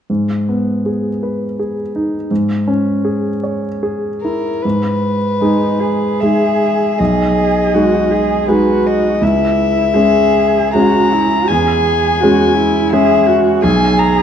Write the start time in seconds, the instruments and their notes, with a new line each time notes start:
0.10 grand piano G#2
0.49 grand piano B3
0.86 grand piano G#4
1.23 grand piano B4
1.59 grand piano G#4
1.96 grand piano D#4
2.31 grand piano G#2
2.68 grand piano C#4
3.05 grand piano G#4
3.44 grand piano C#5
3.83 grand piano G#4
4.21 grand piano E4, violin A#4
4.62 grand piano G#2, violin B4
5.40 grand piano G#3 D#4 G#4, cello D#4
5.80 cello G#4
6.20 grand piano G#3 D#4 G#4, violin E5
6.98 grand piano B1, cello G#4, violin D#5
7.74 grand piano G#3 D#4 G#4, cello F#4
8.11 cello G#4
8.48 grand piano G#3 D#4 G#4, cello F#4, violin B4
8.86 violin D#5
9.21 grand piano C#2, cello E4, violin E5
9.94 grand piano G#3 C#4 G#4, cello G#4
10.73 grand piano G#3 C#4 G#4, cello F#4, violin A#5
11.12 cello E4
11.47 grand piano E2, cello G#4, violin G#5
12.20 grand piano G#3 C#4, cello F#4
12.24 grand piano G#4
12.57 cello E4
12.92 grand piano G#3 C#4 G#4, cello G#4, violin E5
13.27 cello F#4
13.62 grand piano B1, cello G#4, violin G#5
13.98 violin A#5